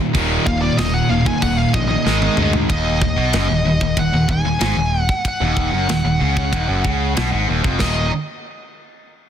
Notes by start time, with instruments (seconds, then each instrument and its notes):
Already playing: overdriven electric guitar D#2 A#2 D#3
0.00 distorted electric guitar D#2 A#2
0.14 picked electric bass D#1, distorted electric guitar D#2 A#2 D#3, kick, crash
0.46 picked electric bass D#1, distorted electric guitar D#2 A#2, lead electric guitar F5, kick
0.62 distorted electric guitar D#2 A#2, lead electric guitar D5
0.77 picked electric bass D#1, distorted electric guitar D#2 A#2, lead electric guitar D#5, snare, crash
0.94 lead electric guitar F#5
1.09 picked electric bass D#1, distorted electric guitar D#2 A#2, overdriven electric guitar D#3, lead electric guitar F5
1.26 distorted electric guitar D#2 A#2, lead electric guitar G#5, kick
1.42 picked electric bass D#1, distorted electric guitar D#2 A#2, lead electric guitar F#5, kick, crash
1.57 lead electric guitar F5
1.74 picked electric bass A#1, distorted electric guitar D#2 A#2, lead electric guitar D#5, kick
1.88 distorted electric guitar D#2 A#2, lead electric guitar D#5
2.06 picked electric bass G#1, distorted electric guitar G#2 D#3 G#3, snare
2.22 high tom
2.37 picked electric bass D2, distorted electric guitar G#2 D#3 G#3, mid tom
2.53 distorted electric guitar G#2 D#3, floor tom
2.69 picked electric bass D#1, distorted electric guitar D#2, lead electric guitar D#5, kick, ride bell
3.01 picked electric bass D#1, distorted electric guitar D#2, kick
3.17 picked electric bass B1, distorted electric guitar B2
3.33 picked electric bass F#1, distorted electric guitar F#2, snare, ride bell
3.49 picked electric bass D#1, distorted electric guitar D#2
3.65 picked electric bass D#1, distorted electric guitar D#2
3.81 picked electric bass D#1, distorted electric guitar D#2, kick
3.97 picked electric bass D#1, distorted electric guitar D#2, lead electric guitar F#5, kick, ride bell
4.13 picked electric bass D#1, distorted electric guitar D#2
4.28 picked electric bass D#1, distorted electric guitar D#2, lead electric guitar G#5, kick
4.45 picked electric bass D#1, distorted electric guitar D#2
4.60 picked electric bass G#1, distorted electric guitar G#2, snare, ride bell
4.76 picked electric bass D#1, distorted electric guitar D#2
5.00 lead electric guitar F#5
5.09 kick
5.25 lead electric guitar F#5, kick, ride bell
5.41 picked electric bass D#1, distorted electric guitar D#2
5.57 kick
5.73 picked electric bass F#1, distorted electric guitar F#2
5.89 picked electric bass D#1, distorted electric guitar D#2, snare, ride bell
6.05 picked electric bass D#1, distorted electric guitar D#2
6.21 picked electric bass C#2, distorted electric guitar C#3
6.37 kick
6.52 picked electric bass D#1, distorted electric guitar D#2, kick, ride bell
6.69 picked electric bass F#1, distorted electric guitar F#2
6.84 picked electric bass C#2, distorted electric guitar C#3, kick
7.16 picked electric bass B1, distorted electric guitar B2, snare, ride bell
7.32 picked electric bass G#1, distorted electric guitar G#2
7.49 picked electric bass D#1, distorted electric guitar D#2
7.64 picked electric bass F1, distorted electric guitar F2, kick
7.80 picked electric bass D#1, distorted electric guitar D#2 A#2 D#3, lead electric guitar D#5, kick, snare, crash